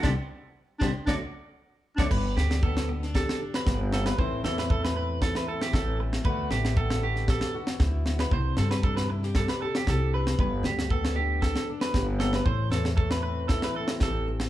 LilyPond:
<<
  \new Staff \with { instrumentName = "Clean electric guitar" } { \time 4/4 \key g \major \tempo 4 = 116 <d' g' c''>16 r4 r16 <d' g' c''>16 r16 <fis' a' d''>16 r4. <fis' a' d''>16 | b'8 g'8 a'8 r8 a'8 r16 b'8 r16 a'16 b'16 | c''8 a'16 b'16 a'16 b'16 b'8 a'16 b'16 a'16 g'16 a'8 r8 | b'8 g'8 a'8 g'8 a'8 r4 r16 b'16 |
c''8 a'16 b'16 a'16 b'16 r8 a'16 b'16 a'16 g'16 a'8 b'8 | b'8 g'8 a'8 g'8 a'8 r16 b'8 r16 a'16 b'16 | c''8 a'16 r16 a'16 b'16 b'8 a'16 b'16 a'16 r16 a'8 r8 | }
  \new Staff \with { instrumentName = "Clarinet" } { \time 4/4 \key g \major d'16 r4 r16 d'16 r16 d'16 r4. d'16 | r1 | r1 | r1 |
r1 | r1 | r1 | }
  \new Staff \with { instrumentName = "Steel-string acoustic guitar" } { \time 4/4 \key g \major << { <d g c'>16 r4 r16 <d g c'>16 r16 <fis a d'>16 r4. <fis a d'>16 | r4 b8 b16 d'16 g'8 d'8 g'8 b8 | <e a c' e'>4 a8 c'8 e'8 c'4 a8 | <a b fis'>4 b8 fis'8 g'8 fis'8 e'8 b8 |
r4 d'8 e'16 g'16 g'8 g'8 g'8 d'8 | r4 b8 d'4 d'8 g'8 b8 | r4 a8 c'8 e'8 c'8 g'4 | } \\ { r1 | g,8 d2.~ d8 | a,8 e2.~ e8 | d8 a2.~ a8 |
c8 g2.~ g8 | g,8 d2.~ d8 | a,8 e2.~ e8 | } >> }
  \new Staff \with { instrumentName = "Upright bass" } { \clef bass \time 4/4 \key g \major c,16 r4 r16 c,16 r16 d,16 r4. d,16 | g,,8 d,2 r8 g,,4 | a,,8 e,2 r8 a,,4 | d,8 a,,2 r8 d,4 |
c,8 g,2 r8 c,4 | g,,8 d,2 r8 g,,4 | a,,8 e,2 r8 a,,4 | }
  \new DrumStaff \with { instrumentName = "Drums" } \drummode { \time 4/4 <bd sn>4 r8 <bd sn>8 <bd sn>4 r8. <bd sn>16 | <cymc bd>8 sn16 sn16 bd16 sn8 sn16 <bd sn>16 sn8 sn16 <bd sn>8 sn16 sn16 | bd8 sn16 sn16 bd16 sn8. <bd sn>16 sn8 sn16 <bd sn>8. sn16 | bd8 sn16 sn16 bd16 sn8 sn16 <bd sn>16 sn8 sn16 <bd sn>8 sn16 sn16 |
bd8 sn16 sn16 bd16 sn8 sn16 <bd sn>16 sn8 sn16 <bd sn>8. sn16 | bd8 sn16 sn16 bd16 sn8. <bd sn>16 sn8 sn16 <bd sn>8 sn16 sn16 | bd8 sn16 sn16 bd16 sn8. <bd sn>16 sn8 sn16 <bd sn>8. sn16 | }
>>